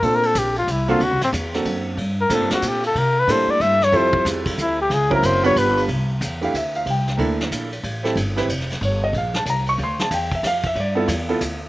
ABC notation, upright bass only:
X:1
M:3/4
L:1/8
Q:"Swing" 1/4=185
K:Gdor
V:1 name="Upright bass" clef=bass
B,,2 B,,,2 C,,2 | (3D,, C,, A,,, E,,2 ^F,,2 | G,,2 (3A,, G,, F,, B,,2 | C,2 A,, z G,,2 |
F,,2 E,,2 D,,2 | _D,,2 _G,,,2 =G,,,2 | [K:C] C,,2 E,,2 D,,2 | C,,2 D,,2 _B,,,2 |
A,,,2 G,,,2 F,,,2 | G,,,2 _B,,,2 C,,2 | D,,2 E,,2 F,,2 | G,,2 E,,2 D,,2 |]